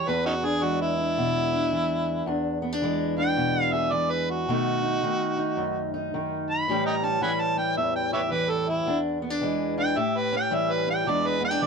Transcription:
0.00 0.45 E3 medium
0.00 0.10 C#5 loud
0.08 2.25 E2 medium
0.08 2.25 G#4 medium
0.08 0.25 B4 medium
0.26 0.34 C#4 medium
0.26 0.33 D#4 medium
0.26 0.47 F#4 loud
0.42 0.97 D4 medium
0.42 0.65 G#4 loud
0.61 1.72 E3 medium
0.61 2.25 G#3 medium
0.61 0.81 F#4 medium
0.82 2.42 E4 loud
0.98 1.51 D4 medium
1.18 1.73 B2 medium
1.52 2.25 D4 medium
1.73 2.25 E3 medium
2.26 4.47 E2 medium
2.26 2.62 D4 medium
2.62 2.72 B3 medium
2.72 3.17 D4 medium
2.82 3.91 E3 medium
2.82 4.46 G#3 medium
3.18 4.45 D4 medium
3.18 3.62 G5 loud
3.37 3.92 B2 medium
3.62 3.75 F5 loud
3.73 4.46 G#4 medium
3.73 3.94 E5 medium
3.92 4.45 E3 medium
3.92 4.12 D5 loud
4.11 4.29 B4 medium
4.30 5.91 F#4 medium
4.49 5.03 B2 medium
4.49 5.02 D#3 medium
4.49 5.03 A3 medium
4.49 4.82 D#4 medium
4.83 5.36 D#4 medium
5.03 6.13 D#3 medium
5.03 6.66 A3 medium
5.37 5.92 D#4 medium
5.57 6.65 F#2 medium
5.94 6.66 D#4 medium
6.14 6.66 D#3 medium
6.50 6.85 B5 loud
6.68 8.88 A2 medium
6.68 7.21 E3 medium
6.68 7.21 G3 medium
6.68 7.02 C#4 medium
6.68 8.12 G4 medium
6.86 6.94 D#5 medium
6.86 6.95 G5 medium
6.86 7.05 A#5 medium
7.04 7.56 C#4 medium
7.04 7.22 A5 loud
7.22 8.31 E3 medium
7.22 8.87 G3 medium
7.22 7.30 F#5 medium
7.22 7.32 G#5 medium
7.22 7.42 B5 loud
7.41 7.57 A5 medium
7.57 8.85 C#4 medium
7.57 7.76 G5 medium
7.77 8.85 E2 medium
7.77 7.95 E5 medium
7.96 8.13 G5 medium
8.13 8.85 G4 medium
8.13 8.21 B4 medium
8.13 8.20 C#5 medium
8.13 8.33 E5 medium
8.31 8.91 E3 medium
8.31 8.51 B4 loud
8.49 8.71 A4 medium
8.69 8.98 E4 medium
8.86 9.97 E2 medium
8.86 9.22 D4 medium
9.22 9.30 B3 medium
9.30 9.76 D4 medium
9.41 9.94 E3 medium
9.41 9.95 G#3 medium
9.78 9.95 D4 medium
9.78 9.99 G5 loud
9.97 11.07 A2 medium
9.97 11.05 G4 medium
9.97 10.19 E5 medium
10.18 10.34 B4 medium
10.33 10.86 C#4 medium
10.33 10.56 G5 loud
10.51 11.04 E3 medium
10.51 11.06 G3 medium
10.51 10.74 E5 medium
10.72 10.89 B4 medium
10.87 11.05 C#4 medium
10.87 11.11 G5 medium
11.06 11.67 E2 medium
11.06 11.61 E3 medium
11.06 11.61 G#3 medium
11.06 11.40 D4 medium
11.06 11.67 G#4 medium
11.06 11.28 D5 medium
11.27 11.44 B4 loud
11.41 11.51 B3 medium
11.41 11.64 G5 loud
11.51 11.67 D4 medium
11.62 11.67 E3 medium
11.62 11.67 G#3 medium
11.62 11.67 D5 loud

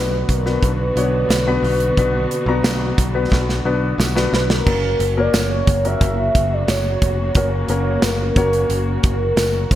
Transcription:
0.00 0.23 B1 medium
0.00 0.25 B2 medium
0.00 4.63 D3 medium
0.00 0.45 B3 medium
0.00 4.63 B3 medium
0.00 0.46 D4 medium
0.00 0.46 F#4 medium
0.00 4.63 F#4 medium
0.00 0.31 B4 medium
0.00 0.46 B4 medium
0.29 0.57 B1 medium
0.29 0.65 A#4 medium
0.29 kick medium
0.29 closed hi-hat medium
0.45 0.89 B3 medium
0.45 0.89 D4 medium
0.45 0.89 F#4 medium
0.45 0.89 B4 medium
0.45 snare soft
0.63 0.90 B1 medium
0.63 4.00 B4 medium
0.63 kick medium
0.63 closed hi-hat medium
0.96 1.23 B1 medium
0.96 1.40 B3 medium
0.96 1.40 D4 medium
0.96 1.40 F#4 medium
0.96 1.40 C#5 medium
0.96 closed hi-hat medium
1.29 1.57 B1 medium
1.29 snare medium
1.29 closed hi-hat medium
1.29 tambourine medium
1.47 1.90 B3 medium
1.47 1.90 D4 medium
1.47 1.90 F#4 medium
1.47 1.91 B4 medium
1.63 1.90 B1 medium
1.63 open hi-hat medium
1.80 closed hi-hat soft
1.97 2.25 B1 medium
1.97 2.94 B2 medium
1.97 2.41 B3 medium
1.97 2.41 D4 medium
1.97 2.41 F#4 medium
1.97 2.41 B4 medium
1.97 kick medium
1.97 closed hi-hat medium
2.31 closed hi-hat medium
2.46 2.61 B1 loud
2.46 3.06 B3 medium
2.46 3.06 D4 medium
2.46 3.06 F#4 medium
2.46 3.06 A#5 medium
2.63 2.91 B1 loud
2.63 snare loud
2.63 closed hi-hat medium
2.63 tambourine medium
2.98 3.26 B1 medium
2.98 kick medium
2.98 closed hi-hat medium
3.14 3.58 B3 medium
3.14 3.58 D4 medium
3.14 3.58 F#4 medium
3.14 3.58 B4 medium
3.32 3.59 B1 loud
3.32 kick medium
3.32 snare soft
3.49 snare soft
3.64 3.92 B1 medium
3.64 4.09 B3 medium
3.64 4.09 D4 medium
3.64 4.09 F#4 medium
3.64 4.09 B4 medium
3.98 4.26 B1 medium
3.98 snare medium
3.98 tambourine medium
4.15 4.59 B3 medium
4.15 4.59 D4 medium
4.15 4.59 F#4 medium
4.15 4.60 B4 medium
4.15 snare medium
4.33 4.60 B1 medium
4.33 4.53 B4 medium
4.33 snare medium
4.50 5.21 A#4 medium
4.50 snare medium
4.66 4.94 F#1 loud
4.66 9.75 C#3 medium
4.66 5.10 A#3 medium
4.66 9.75 A#3 medium
4.66 5.10 C#4 medium
4.66 9.75 F#4 medium
4.66 5.10 F#4 medium
4.66 5.10 A#4 medium
4.66 kick medium
4.66 crash medium
4.99 5.27 F#1 loud
4.99 closed hi-hat medium
5.17 5.75 A#3 medium
5.17 5.75 C#4 medium
5.17 5.75 F#4 medium
5.17 5.75 A#4 medium
5.17 5.38 D5 medium
5.33 5.61 F#1 medium
5.33 5.88 C#5 loud
5.33 snare loud
5.33 closed hi-hat medium
5.33 tambourine medium
5.67 5.95 F#1 medium
5.67 kick medium
5.67 closed hi-hat medium
5.85 7.00 A#3 medium
5.85 7.00 C#4 medium
5.85 7.00 F#4 medium
5.85 7.01 A#4 medium
5.85 6.55 E5 loud
5.85 closed hi-hat soft
6.01 6.29 F#1 loud
6.01 kick medium
6.01 closed hi-hat medium
6.35 6.62 F#1 medium
6.35 kick medium
6.35 closed hi-hat medium
6.53 6.69 D5 medium
6.68 6.95 F#1 loud
6.68 7.32 C#5 medium
6.68 snare medium
6.68 closed hi-hat medium
6.68 tambourine medium
7.02 7.30 F1 medium
7.02 kick medium
7.02 closed hi-hat medium
7.35 7.63 F#1 loud
7.35 7.65 A#3 medium
7.35 7.65 C#4 medium
7.35 7.65 F#4 medium
7.35 7.65 A#4 medium
7.35 8.05 C#5 medium
7.35 kick loud
7.35 closed hi-hat medium
7.68 7.96 F#1 loud
7.68 8.27 A#3 medium
7.68 8.27 C#4 medium
7.68 8.27 F#4 medium
7.68 8.28 A#4 medium
7.68 closed hi-hat medium
8.02 8.30 F#1 loud
8.02 9.74 A#4 loud
8.02 snare loud
8.02 closed hi-hat medium
8.02 tambourine medium
8.36 8.64 F#1 loud
8.36 9.52 A#3 medium
8.36 9.53 C#4 medium
8.36 9.53 F#4 medium
8.36 9.53 C#5 medium
8.36 kick loud
8.36 closed hi-hat medium
8.53 closed hi-hat medium
8.69 8.97 F#1 medium
8.69 closed hi-hat medium
9.03 9.31 F#1 medium
9.03 kick medium
9.03 closed hi-hat medium
9.36 9.64 F#1 medium
9.36 snare medium
9.36 closed hi-hat medium
9.36 tambourine medium
9.71 9.75 A#1 medium
9.71 9.75 C#5 loud
9.71 kick medium
9.71 closed hi-hat medium

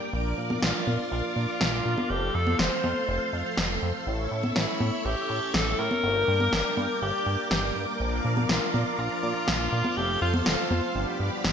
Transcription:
0.00 0.10 G3 medium
0.00 0.10 A#3 medium
0.00 0.10 D4 medium
0.00 0.10 A#4 medium
0.00 0.11 A#4 medium
0.00 0.11 D5 medium
0.00 0.11 G5 medium
0.00 2.06 D6 medium
0.13 0.34 A#1 medium
0.13 2.07 F3 medium
0.13 2.07 A#3 medium
0.13 2.07 D4 medium
0.13 2.07 A#4 medium
0.13 2.08 A#4 medium
0.13 2.08 D5 medium
0.13 2.08 F5 medium
0.38 0.59 A#2 medium
0.50 high conga medium
0.62 0.73 A#1 loud
0.62 1.08 F4 medium
0.62 snare loud
0.87 0.97 A#2 loud
0.87 high conga medium
1.12 1.22 A#1 loud
1.12 2.12 F4 medium
1.36 1.47 A#2 medium
1.61 1.81 A#1 medium
1.61 snare loud
1.85 1.96 A#2 medium
1.98 high conga medium
2.10 2.31 F1 loud
2.10 4.04 F3 medium
2.10 4.04 A3 medium
2.10 4.04 C4 medium
2.10 2.36 G4 loud
2.10 6.00 A4 medium
2.10 4.04 A4 medium
2.10 4.05 C5 medium
2.10 4.05 F5 medium
2.10 4.05 C6 medium
2.34 2.55 F2 medium
2.34 2.61 A4 loud
2.47 high conga medium
2.59 2.70 F1 loud
2.59 3.33 C5 loud
2.59 snare loud
2.84 2.94 F2 loud
2.84 high conga medium
3.08 3.19 F1 loud
3.33 3.43 F2 medium
3.57 3.78 F1 medium
3.57 snare loud
3.82 3.93 F2 medium
4.07 4.27 A1 loud
4.07 6.01 A3 medium
4.07 6.01 C#4 medium
4.07 6.01 E4 medium
4.07 6.01 C#5 medium
4.07 6.02 E5 medium
4.07 6.02 C#6 medium
4.31 4.52 A2 medium
4.43 high conga medium
4.56 4.66 A1 loud
4.56 5.07 E4 medium
4.56 snare loud
4.80 4.91 A2 loud
4.80 high conga medium
5.05 5.15 A1 loud
5.05 5.56 G4 loud
5.30 5.40 A2 medium
5.54 5.75 A1 medium
5.54 5.80 A4 loud
5.54 snare loud
5.79 5.89 A2 medium
5.79 7.01 A#4 loud
5.91 high conga medium
6.03 6.24 G1 loud
6.03 7.97 G3 medium
6.03 7.97 A#3 medium
6.03 7.97 D4 medium
6.03 7.97 A#4 medium
6.03 9.93 A#4 medium
6.03 7.98 D5 medium
6.03 7.98 G5 medium
6.03 9.93 D6 medium
6.28 6.49 G2 medium
6.40 high conga medium
6.53 6.63 G1 medium
6.53 snare loud
6.77 6.88 G2 loud
6.77 high conga medium
7.02 7.12 G1 loud
7.02 7.48 G4 medium
7.26 7.37 G2 medium
7.51 7.72 G1 medium
7.51 7.85 G4 medium
7.51 snare loud
7.76 7.86 G2 medium
8.00 8.21 A#1 medium
8.00 9.94 F3 medium
8.00 9.94 A#3 medium
8.00 9.94 D4 medium
8.00 9.94 A#4 medium
8.00 9.95 D5 medium
8.00 11.52 F5 medium
8.25 8.45 A#2 medium
8.37 high conga medium
8.49 8.60 A#1 loud
8.49 8.95 F4 medium
8.49 snare loud
8.74 8.84 A#2 loud
8.74 high conga medium
8.98 9.09 A#1 loud
8.98 9.99 F4 loud
9.23 9.33 A#2 medium
9.48 9.68 A#1 medium
9.48 snare loud
9.72 9.83 A#2 medium
9.85 high conga medium
9.97 10.18 F1 loud
9.97 10.92 F3 medium
9.97 10.92 A3 medium
9.97 10.92 C4 medium
9.97 10.21 G4 loud
9.97 10.94 A4 medium
9.97 10.92 A4 medium
9.97 10.94 C5 medium
9.97 10.94 C6 medium
10.22 10.42 F2 medium
10.22 10.33 F4 medium
10.34 high conga medium
10.46 10.56 F1 loud
10.46 11.16 F4 medium
10.46 snare loud
10.71 10.81 F2 loud
10.71 high conga medium
10.95 11.06 G1 loud
10.95 11.52 F3 medium
10.95 11.52 B3 medium
10.95 11.52 D4 medium
10.95 11.52 G4 medium
10.95 11.52 D5 medium
10.95 11.52 B5 medium
11.20 11.30 G2 medium
11.44 11.52 G1 medium
11.44 snare loud

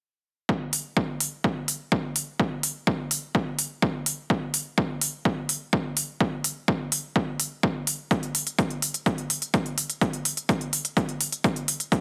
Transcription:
0.49 kick loud
0.73 open hi-hat medium
0.97 kick loud
1.20 open hi-hat medium
1.44 kick loud
1.68 open hi-hat loud
1.92 kick loud
2.16 open hi-hat loud
2.40 kick loud
2.63 open hi-hat loud
2.87 kick loud
3.11 open hi-hat loud
3.35 kick loud
3.59 open hi-hat loud
3.82 kick loud
4.06 open hi-hat loud
4.30 kick loud
4.54 open hi-hat loud
4.78 kick loud
5.01 open hi-hat loud
5.25 kick loud
5.49 open hi-hat loud
5.73 kick loud
5.97 open hi-hat loud
6.21 kick loud
6.44 open hi-hat loud
6.68 kick loud
6.92 open hi-hat loud
7.16 kick loud
7.40 open hi-hat loud
7.63 kick loud
7.87 open hi-hat loud
8.11 kick loud
8.11 closed hi-hat soft
8.23 closed hi-hat soft
8.35 open hi-hat loud
8.47 closed hi-hat soft
8.59 kick loud
8.59 closed hi-hat soft
8.70 closed hi-hat soft
8.82 open hi-hat loud
8.94 closed hi-hat soft
9.06 kick loud
9.06 closed hi-hat soft
9.18 closed hi-hat soft
9.30 open hi-hat loud
9.42 closed hi-hat soft
9.54 kick loud
9.54 closed hi-hat soft
9.66 closed hi-hat soft
9.78 open hi-hat loud
9.90 closed hi-hat soft
10.01 kick loud
10.01 closed hi-hat soft
10.13 closed hi-hat soft
10.25 open hi-hat loud
10.37 closed hi-hat soft
10.49 kick loud
10.49 closed hi-hat medium
10.61 closed hi-hat soft
10.73 open hi-hat medium
10.85 closed hi-hat medium
10.97 kick loud
10.97 closed hi-hat soft
11.09 closed hi-hat soft
11.21 open hi-hat loud
11.32 closed hi-hat soft
11.44 kick loud
11.44 closed hi-hat soft
11.56 closed hi-hat soft
11.68 open hi-hat loud
11.80 closed hi-hat soft
11.92 kick loud
11.92 closed hi-hat medium

